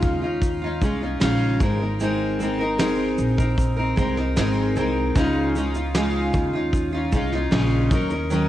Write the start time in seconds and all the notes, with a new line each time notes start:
Already playing: C#3 G#3 C#4 D#4 F4
0.02 D#2, kick, shaker
0.22 C#4 D#4 F4
0.42 kick, shaker
0.62 C#4 D#4 F4
0.81 C2 G#3 C#4 D#4 F4, kick, shaker
1.01 C#4 D#4 F4
1.20 A#1 C#3 G#3 C#4 D#4 F4, snare, shaker
1.60 G#1 G#3 C4 D#4 A#4, kick, shaker
1.80 C4 D#4 A#4
2.00 G#3 C4 D#4 A#4, shaker
2.39 G#3 C4 D#4 A#4, shaker
2.58 C4 D#4 A#4
2.78 G#3 C4 D#4 A#4, snare, shaker
3.18 A#1, shaker
3.37 C4 D#4 A#4, kick, shaker
3.58 kick, shaker
3.77 C4 D#4 A#4
3.96 C2 G#3 C4 D#4 A#4, kick, shaker
4.16 C4 D#4 A#4, snare
4.36 G#1 G#3 C4 D#4 A#4, snare, shaker
4.76 C2 G#3 C4 D#4 A#4, shaker
5.15 C#2 C#3 G#3 C#4 D#4 F4, kick, shaker
5.55 G#3 C#4 D#4 F4, shaker
5.74 C#4 D#4 F4, shaker
5.94 C#3 G#3 C#4 D#4 F4, snare, shaker
6.33 D#2, kick, shaker
6.53 C#4 D#4 F4
6.73 kick, shaker
6.92 C#4 D#4 F4
7.12 C2 G#3 C#4 D#4 F4, kick, shaker
7.32 C#4 D#4 F4, snare
7.51 A#1 C#3 G#3 C#4 D#4 F4, snare, shaker
7.91 D#2 F#3 C#4 D#4 A#4, kick, shaker
8.10 C#4 D#4 A#4, shaker
8.30 D#3 F#3 C#4 D#4 A#4, shaker